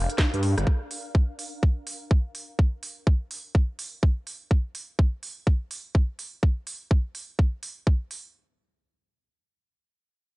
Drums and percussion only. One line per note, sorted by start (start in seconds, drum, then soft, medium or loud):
0.10 closed hi-hat medium
0.18 kick loud
0.18 snare loud
0.18 closed hi-hat medium
0.34 closed hi-hat soft
0.43 closed hi-hat medium
0.43 open hi-hat medium
0.58 cross-stick medium
0.58 closed hi-hat medium
0.67 kick loud
0.91 open hi-hat loud
1.15 kick loud
1.39 open hi-hat medium
1.63 kick loud
1.87 open hi-hat loud
2.11 kick loud
2.35 open hi-hat medium
2.59 kick loud
2.83 open hi-hat loud
3.07 kick loud
3.31 open hi-hat medium
3.55 kick loud
3.79 open hi-hat loud
4.03 kick loud
4.27 open hi-hat medium
4.51 kick loud
4.75 open hi-hat medium
4.99 kick loud
5.23 open hi-hat medium
5.47 kick loud
5.71 open hi-hat loud
5.95 kick loud
6.19 open hi-hat medium
6.43 kick loud
6.67 open hi-hat loud
6.91 kick loud
7.15 open hi-hat medium
7.39 kick loud
7.63 open hi-hat loud
7.87 kick loud
8.11 open hi-hat medium